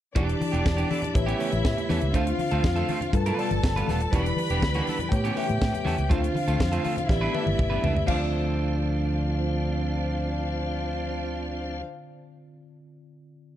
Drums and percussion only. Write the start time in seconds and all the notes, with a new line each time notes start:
0.16 kick, closed hi-hat, muted conga
0.29 closed hi-hat
0.41 open hi-hat, muted conga, high conga
0.54 closed hi-hat
0.65 kick, snare, muted conga, high conga
0.78 closed hi-hat
0.91 open hi-hat, muted conga, high conga
1.02 closed hi-hat, low conga
1.15 kick, closed hi-hat
1.28 closed hi-hat
1.40 open hi-hat, muted conga
1.52 closed hi-hat, high conga
1.64 kick, snare, muted conga
1.77 closed hi-hat, low conga
1.89 snare, open hi-hat, high conga
2.01 closed hi-hat
2.14 kick, closed hi-hat
2.27 closed hi-hat
2.39 open hi-hat, muted conga, high conga
2.51 closed hi-hat
2.63 kick, snare, high conga
2.76 closed hi-hat
2.89 open hi-hat, muted conga, high conga
3.01 closed hi-hat, low conga
3.13 kick, closed hi-hat, muted conga
3.26 closed hi-hat
3.39 open hi-hat, muted conga
3.51 closed hi-hat, high conga
3.62 kick, snare, muted conga
3.76 closed hi-hat, low conga
3.88 snare, open hi-hat, muted conga, high conga
4.01 closed hi-hat
4.12 kick, closed hi-hat, muted conga
4.26 closed hi-hat
4.37 open hi-hat, high conga
4.50 closed hi-hat
4.61 kick, snare, muted conga, high conga
4.74 closed hi-hat
4.87 open hi-hat, high conga
4.99 closed hi-hat, low conga
5.12 kick, closed hi-hat, muted conga
5.25 closed hi-hat
5.37 open hi-hat, muted conga
5.49 closed hi-hat, high conga
5.62 kick, snare
5.74 closed hi-hat, low conga
5.85 snare, open hi-hat, high conga
5.98 closed hi-hat
6.10 kick, closed hi-hat, muted conga, low conga
6.24 closed hi-hat
6.35 open hi-hat, muted conga, high conga
6.48 closed hi-hat
6.59 kick, snare, muted conga, high conga
6.73 closed hi-hat
6.84 open hi-hat, muted conga, high conga
6.97 closed hi-hat, low conga
7.09 kick, snare
7.35 high tom
7.47 high tom, high conga
7.58 kick, mid tom, muted conga
7.71 low conga
7.83 floor tom, muted conga, high conga
7.97 floor tom
8.08 kick, crash, high conga